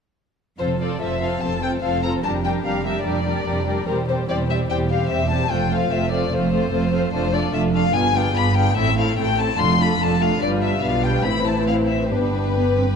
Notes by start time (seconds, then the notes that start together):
0.59 F1 F2 C4 F4 A4 C5
0.80 C4 F4 A4 C5 D5
1.01 F1 F2 C4 F4 A4 C5 E5
1.21 C4 F4 A4 C5 F5
1.42 F1 F2 C4 F4 A4 C5 A5
1.62 C4 F4 A4 C5 G5
1.82 F1 F2 C4 F4 A4 C5 F5
2.03 C4 F4 A4 C5 A#5
2.24 F1 F2 G3 D4 G4 A#4 A5
2.45 G3 D4 G4 A#4 G5
2.65 F1 F2 G3 D4 G4 A#4 F5
2.86 G3 D4 G4 A#4 E5
3.05 F1 F2 G3 D4 G4 A#4 D5
3.26 G3 D4 G4 A#4
3.46 F1 F2 G3 D4 G4 A#4
3.67 G3 D4 G4 A#4
3.87 E1 E2 G3 C4 G4 A#4 C5
4.08 G3 C4 G4 C5
4.28 E1 E2 G3 C4 G4 C5 D5
4.50 G3 C4 G4 C5 E5
4.69 E1 E2 G3 C4 G4 C5 G5
4.90 G3 C4 G4 C5 F5
5.11 E1 E2 G3 C4 G4 C5 E5
5.30 G3 C4 G4 C5 A5
5.51 F1 F2 A3 C4 F4 C5 G5
5.72 A3 C4 F4 C5 F5
5.92 F1 F2 A3 C4 F4 C5 E5
6.13 A3 C4 F4 C5 D5
6.33 F1 F2 A3 C4 F4 C5
6.53 A3 C4 F4 C5
6.73 F1 F2 A3 C4 F4 C5
6.93 A3 C4 F4 C5
7.13 F1 F2 A3 D4 F4 A4 C5
7.33 A3 D4 F4 A4 D5
7.53 F1 F2 A3 D4 F4 A4 E5
7.73 A3 D4 F4 A4 F5
7.93 G1 G2 B3 D4 F4 G#4 G#5
8.14 B3 D4 F4 G#4 G5
8.34 G1 G2 B3 D4 F4 G#4 B5
8.56 B3 D4 F4 G#4 G5
8.76 A1 A2 A3 C4 E4 A4 E5
8.97 A3 C4 E4 A4 F5
9.18 A1 A2 A3 C4 E4 A4 G5
9.38 A3 C4 E4 A4 A5
9.58 F1 F2 A3 D4 F4 A4 C6
9.79 A3 D4 F4 A4 B5
10.01 F1 F2 A3 D4 F4 A4 A5
10.20 A3 D4 F4 A4 F5
10.41 G1 G2 G3 D4 F4 B4 D5
10.62 E5
10.83 B1 B2 G3 D4 F4 B4 F5
11.04 G5
11.24 A1 A2 E3 C4 E4 C5 B5
11.46 A5
11.67 F5
11.88 E5
12.10 G1 G2 B3 D4 G4 B4
12.56 B3
12.78 C4